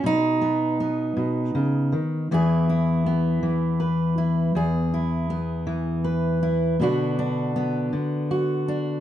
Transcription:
Already playing: F#4
0.04 B2 D#4
0.42 B3
0.80 B3
1.17 B2
1.55 C#3
1.92 D#3
2.31 E2 E3 B3 E4 G#4
2.70 E4
3.06 B3
3.43 E3
3.80 B4
4.18 E4
4.55 E2 G#4
4.94 E4
5.30 B3
5.67 E3
6.04 B4
6.43 E4
6.80 B2 D3 B3 D4 F#4
7.19 D4
7.56 B3
7.93 D3
8.31 F#4
8.68 D4

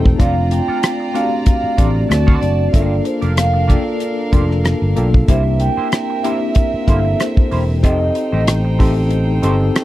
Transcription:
Already playing: E1 A3 C4 D#4 F4 G4 A4 C5 G5
0.05 muted clean electric guitar stroke, kick
0.19 F1 A3 C4 D4 F4 A4 D5 F5 A#5, kick, closed hi-hat
0.51 G5, muted clean electric guitar stroke, closed hi-hat
0.68 D4 F4 A4 D5, muted fingered electric bass stroke
0.83 cross-stick, closed hi-hat
1.00 muted clean electric guitar stroke
1.14 A3 C4 D4 F4 F#4 A4 D5 F5, closed hi-hat
1.22 G4
1.32 muted clean electric guitar stroke
1.46 F5, muted clean electric guitar stroke, kick, closed hi-hat
1.64 muted fingered electric bass stroke
1.77 A1 A3 C4 D4 F4 G4 A4 D5, kick, closed hi-hat
1.95 muted clean electric guitar stroke
2.09 D2 A3 C4 D4 F#4 D5 A5, muted clean electric guitar stroke, cross-stick, closed hi-hat
2.27 C4 F#4 A4 D5, kick
2.41 F#1 D5, muted clean electric guitar stroke, closed hi-hat
2.59 muted clean electric guitar stroke
2.73 G1 A3 A#3 D4 F4 G4 A4 A#4 D5 F5, kick, closed hi-hat
2.80 A#3
3.04 C5, muted clean electric guitar stroke, closed hi-hat
3.22 F1 A#3 F4 G4 D5, closed hi-hat
3.37 F5, cross-stick, closed hi-hat
3.54 muted clean electric guitar stroke
3.68 A#3 D4 F4 G4 A4 D5, kick, closed hi-hat
4.00 muted clean electric guitar stroke, closed hi-hat
4.32 F1 A#3 D4 F4 G4 A4 D5, kick, closed hi-hat
4.49 muted clean electric guitar stroke, cross-stick
4.64 muted clean electric guitar stroke, cross-stick, closed hi-hat
4.82 G1
4.96 B1 A#3 D4 F4 G4 A4 D5, closed hi-hat
5.14 muted clean electric guitar stroke, kick
5.28 C2 A#3 C4 D4 E4 G4 A#4 C5 E5, kick, closed hi-hat
5.60 G5, muted clean electric guitar stroke, closed hi-hat
5.77 A#3 E4 G4 C5, muted fingered electric bass stroke
5.92 cross-stick, closed hi-hat
6.10 muted clean electric guitar stroke
6.23 A#3 D4 E4 G4 C5 E5, closed hi-hat
6.55 muted clean electric guitar stroke, kick, closed hi-hat
6.74 muted fingered electric bass stroke
6.81 F5
6.87 G1 A#3 D4 E4 G4 A4 C5 E5, kick, closed hi-hat
7.05 muted clean electric guitar stroke
7.19 C5, muted clean electric guitar stroke, cross-stick, closed hi-hat
7.37 kick
7.51 E1 A#3 E4 G4 C5, open hi-hat
7.69 muted clean electric guitar stroke
7.83 F1 A3 C4 D#4 G4 A4 C5 D#5 G5, kick, closed hi-hat
8.15 muted clean electric guitar stroke, closed hi-hat
8.32 A1 A3 D#4 G4 C5
8.47 cross-stick, closed hi-hat
8.65 muted clean electric guitar stroke
8.79 A3 C4 D#4 G4 A4 C5, kick, cross-stick, open hi-hat
8.96 muted clean electric guitar stroke
9.11 muted clean electric guitar stroke, closed hi-hat
9.42 G1 A3 C4 D#4 G4 A4 C5 D#5, closed hi-hat
9.60 muted clean electric guitar stroke
9.75 G5, muted clean electric guitar stroke, cross-stick, closed hi-hat

